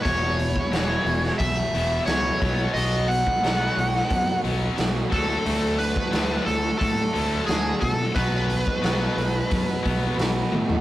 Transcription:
<<
  \new Staff \with { instrumentName = "Lead electric guitar" } { \time 4/4 \key b \mixolydian \tempo 4 = 89 cis''2 e''4 cis''4 | dis''8 fis''2 r4 a'8~ | a'8 b'4 a'8 a'4 gis'8 a'8 | b'2.~ b'8 r8 | }
  \new Staff \with { instrumentName = "Steel-string acoustic guitar" } { \time 4/4 \key b \mixolydian <e, b, e b e' fis'>8. <e b e' fis'>16 <e, b, e b e' fis'>8 <e b e' fis'>16 <e b e' fis'>8 <e b e' fis'>16 <e b e' fis'>8 <e, b, e b e' fis'>8 <fis b dis' fis'>16 <b dis' fis'>16 | <b, fis b dis' fis'>8. <b dis' fis'>16 <b, fis b dis' fis'>8 <fis b dis' fis'>16 <b dis' fis'>8 <b dis' fis'>16 <fis b dis' fis'>8 <b, fis b dis' fis'>8 <fis a d' fis'>16 <a d' fis'>16 | <d fis a d' fis'>8. <a d' fis'>16 <d fis a d' fis'>8 <fis a d'>16 <a d' fis'>8 <a d' fis'>16 <fis a d' fis'>8 <d fis a d' fis'>8 <fis a d' fis'>16 <a d' fis'>16 | <b, fis b dis' fis'>8. <b dis' fis'>16 <b, fis b dis' fis'>8 <fis b dis' fis'>16 <b dis' fis'>8 <b dis' fis'>16 <fis b dis' fis'>8 <b, fis b dis' fis'>8 <fis b dis' fis'>16 <b dis' fis'>16 | }
  \new Staff \with { instrumentName = "Distorted electric guitar" } { \clef bass \time 4/4 \key b \mixolydian <e, b, e>2.~ <e, b, e>8 <b, fis b>8~ | <b, fis b>2.~ <b, fis b>8 <d a d'>8~ | <d a d'>2.~ <d a d'>8 r8 | <b, fis b>1 | }
  \new Staff \with { instrumentName = "Distorted electric guitar" } { \clef bass \time 4/4 \key b \mixolydian <e, b, e>8 <e, b,>8 <e, b, e>8 <e, b,>8 <e, b,>8 <e, b, e>8 <e, b,>8 <b, fis b>8 | <b, fis b>8 <b, fis>8 <b, fis b>8 <b, fis>8 <b, fis>8 <b, fis b>8 <b, fis>8 <d fis a>8 | <d fis a>8 <d fis>8 <d fis a>8 <d fis>8 <d fis>8 <d fis a>8 <d fis>8 <d fis>8 | <b, fis b>8 <b, fis>8 <b, fis b>8 <b, fis>8 <b, fis>8 <b, fis b>8 <b, fis>8 <b, fis>8 | }
  \new Staff \with { instrumentName = "Fingered electric bass" } { \clef bass \time 4/4 \key b \mixolydian e,,4 e,,8 e,,8 b,,8 e,,8 cis,8 b,,8 | b,,4 b,,8 b,,8 fis,8 b,,8 b,,8 d,8 | d,4 d,8 d,8 a,8 d,8 d,8 b,8 | b,,4 b,,8 b,,8 fis,8 b,,8 b,,8 a,8 | }
  \new DrumStaff \with { instrumentName = "Drums" } \drummode { \time 4/4 <hho bd>8 hho16 bd16 <hho sn>8 hho16 sn16 <hho bd>8 hho8 <hho sn>8 <hho bd>8 | hho8 hho16 bd16 <hho sn>8 hho16 sn16 <hho bd>8 hho8 <hho sn>8 <hho bd>8 | hho8 hho16 bd16 <hho sn>8 hho8 <hho bd>8 hho8 <hho sn>8 <hho bd>8 | <hho bd>8 hho16 bd16 <hho sn>8 hho8 <hho bd>8 <hho bd>8 <hho sn>8 tommh16 tomfh16 | }
>>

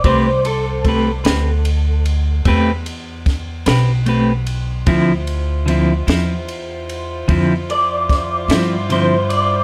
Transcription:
<<
  \new Staff \with { instrumentName = "Clean electric guitar" } { \time 12/8 \key a \minor \tempo 4. = 50 c''8 a'2 r2. r8 | r2. r8 d''4. c''8 d''8 | }
  \new Staff \with { instrumentName = "Horn section" } { \time 12/8 \key a \minor r1. | <e' f' c''>1. | }
  \new Staff \with { instrumentName = "Clean electric guitar" } { \time 12/8 \key a \minor <a c' g' b'>8 r8 <a c' g' b'>8 <c' g' b'>8 r4 <a c' g' b'>8 r4 <c' g' b'>8 <a c' g' b'>8 r8 | <d f c' e'>8 r8 <d f c' e'>8 <f c' e'>8 r4 <d f c' e'>8 r4 <f c' e'>8 <d f c' e'>8 r8 | }
  \new Staff \with { instrumentName = "Upright bass" } { \clef bass \time 12/8 \key a \minor c,4. d,4. e,4. b,,4. | d,4. e,4. f,4. g,4. | }
  \new DrumStaff \with { instrumentName = "Drums" } \drummode { \time 12/8 <bd cymr>8 cymr8 <bd cymr>8 <cymr sn>8 cymr8 cymr8 <bd cymr>8 cymr8 <bd cymr sn>8 <cymr sn>8 cymr8 cymr8 | <bd cymr>8 cymr8 cymr8 <cymr sn>8 cymr8 cymr8 <bd cymr>8 cymr8 <bd cymr sn>8 <cymr sn>8 cymr8 cymr8 | }
>>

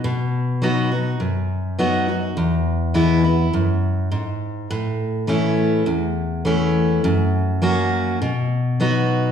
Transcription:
\new Staff \with { instrumentName = "Steel-string acoustic guitar" } { \time 4/4 \key b \mixolydian \tempo 4 = 103 << { r4 <fis b dis' fis'>8 <dis' fis'>8 r4 <fis b dis' fis'>8 <dis' fis'>8 | r4 <e gis b e'>8 <b e'>8 r2 | r4 <e a cis' e'>4 r4 <e a cis' e'>4 | r4 <fis ais cis' fis'>4 r4 <fis b dis' fis'>4 | } \\ { b,2 fis,2 | e,2 fis,4 gis,4 | a,2 e,2 | fis,2 b,2 | } >> }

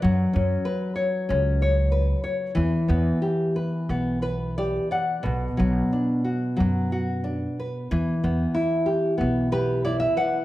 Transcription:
<<
  \new Staff \with { instrumentName = "Nylon-string guitar" } { \time 4/4 \key e \dorian \tempo 4 = 93 << { r1 | r2 r8 b'8 d''8 fis''8 | r1 | r2 r8 b'8 d''16 e''16 fis''8 | } \\ { fis8 cis'8 b'8 cis''8 cis'8 cis''8 b'8 cis''8 | e8 b8 g'8 b'8 b8 b'8 g'8 d''8 | b,8 fis8 d'8 fis'8 fis8 fis'8 d'8 b'8 | e8 b8 e'8 g'8 b8 g'8 e'8 b'8 | } >> }
  \new Staff \with { instrumentName = "Upright bass" } { \clef bass \time 4/4 \key e \dorian fis,8 fis,8 r4 cis,2 | e,8 e,8 r4 b,,2 | b,,8 b,,8 r4 fis,2 | e,8 e,8 r4 b,,2 | }
>>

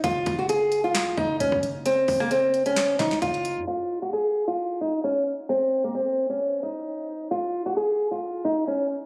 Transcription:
<<
  \new Staff \with { instrumentName = "Steel-string acoustic guitar" } { \time 4/4 \key ges \lydian \tempo 4 = 132 f'8. ges'16 aes'8. f'8. ees'8 des'8 r8 | c'8. bes16 c'8. des'8. ees'8 f'4 | f'8. ges'16 aes'8. f'8. ees'8 des'8 r8 | c'8. bes16 c'8. des'8. ees'4. |
f'8. ges'16 aes'8. f'8. ees'8 des'8 r8 | }
  \new Staff \with { instrumentName = "808-style bass" } { \clef bass \time 4/4 \key ges \lydian ges,,8 ges,,4. bes,,8 ges,,8 des,16 ges,16 ges,,8~ | ges,,8 ges,,2 des,8 ges,,8. ges,16 | r1 | r1 |
r1 | }
  \new DrumStaff \with { instrumentName = "Drums" } \drummode { \time 4/4 <hh bd>8 <hh bd>8 hh8 hh8 <hc hh sn>8 bd8 hh16 bd16 hh8 | hh8 <hho bd>16 ss16 hh8 hh16 hh16 <hc hh sn>8 <hc bd sn>16 sn16 <hh bd>16 hh16 hh8 | r4 r4 r4 r4 | r4 r4 r4 r4 |
r4 r4 r4 r4 | }
>>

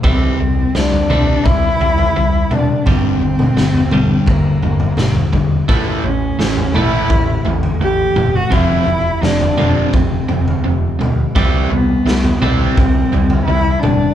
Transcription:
<<
  \new Staff \with { instrumentName = "Cello" } { \time 4/4 \key c \lydian \tempo 4 = 85 c'4 d'4 e'4. d'8 | c'2 bes4. r8 | r8 cis'4 e'4 r8 g'8. fis'16 | e'4 d'4 c'4. r8 |
r8 b4 c'4. e'8 d'8 | }
  \new Staff \with { instrumentName = "Clean electric guitar" } { \clef bass \time 4/4 \key c \lydian <c e g>8 <c e>8 <c e>8 <c e g>8 <c e>8 <c e>8 <c e>8 <c e>8 | <g, d g>8 <g, d>8 <g, d>8 <g, d g>8 <g, d>8 <g, d>8 <g, d>8 <g, d>8 | <a, e a>8 <a, e>8 <a, e>8 <a, e a>8 <a, e>8 <a, e>8 <a, e>8 <a, e>8 | <f, c f>8 <f, c>8 <f, c>8 <f, c f>8 <f, c>8 <f, c>8 <f, c>8 <f, c>8 |
<c e g>8 <c e>8 <c e>8 <c e g>8 <c e>8 <c e>8 <c e>8 <c e>8 | }
  \new Staff \with { instrumentName = "Distorted electric guitar" } { \clef bass \time 4/4 \key c \lydian <c g c'>8 <c g>8 <c g>8 <c g c'>8 <c g>8 <c g>8 <c g>8 <c g>8 | <g, d g>8 <g, d>8 <g, d>8 <g, d g>8 <g, d>8 <g, d>8 <g, d>8 <g, d>8 | <a, e a>8 <a, e>8 <a, e>8 <a, e a>8 <a, e>8 <a, e>8 <a, e>8 <a, e>8 | <f, c f>8 <f, c>8 <f, c>8 <f, c f>8 <f, c>8 <f, c>8 <f, c>8 <f, c>8 |
<c g c'>8 <c g>8 <c g>8 <c g c'>8 <c g>8 <c g>8 <c g>8 <c g>8 | }
  \new Staff \with { instrumentName = "Overdriven electric guitar" } { \clef bass \time 4/4 \key c \lydian r1 | r1 | <a, e a>8 <a, e>8 <a, e>8 <a, e a>8 <a, e>8 <a, e>8 <a, e>8 <a, e>8 | <f, c f>8 <f, c>8 <f, c>8 <f, c f>8 <f, c>8 <f, c>8 <f, c>8 <f, c>8 |
<c g c'>8 <c g>8 <c g>8 <c g c'>8 <c g>8 <c g>8 <c g>8 <c g>8 | }
  \new Staff \with { instrumentName = "Picked electric bass" } { \clef bass \time 4/4 \key c \lydian c,8 c,8 c,8 c,8 c,8 c,8 c,8 c8 | g,,8 g,,8 g,,8 g,,8 g,,8 g,,8 g,,8 e,,8 | a,,8 a,,8 a,,8 a,,8 a,,8 a,,8 a,,8 fis,,8 | f,,8 f,,8 f,,8 f,,8 f,,8 f,,8 f,,8 d,8 |
c,8 c,8 c,8 c,8 c,8 c,8 c,8 fis,,8 | }
  \new DrumStaff \with { instrumentName = "Drums" } \drummode { \time 4/4 <bd tomfh>4 sn16 tomfh16 <tomfh toml>8 <bd tomfh>8 tomfh16 tomfh16 r8 <tomfh toml>8 | <bd tomfh>8. toml16 sn16 tomfh16 <tomfh toml>8 <bd tomfh>8 tomfh16 tomfh16 <sn toml>16 tomfh16 <bd tomfh>8 | <bd tomfh>4 sn16 tomfh16 <tomfh toml>8 <bd tomfh>8 tomfh16 tomfh16 r8 <tomfh toml>8 | <bd tomfh>4 sn16 tomfh16 <tomfh toml>8 <bd tomfh>8 tomfh16 tomfh16 r8 <tomfh toml>8 |
<bd tomfh>4 sn16 tomfh16 <tomfh toml>8 <bd tomfh>8 tomfh16 tomfh16 r8 <tomfh toml>8 | }
>>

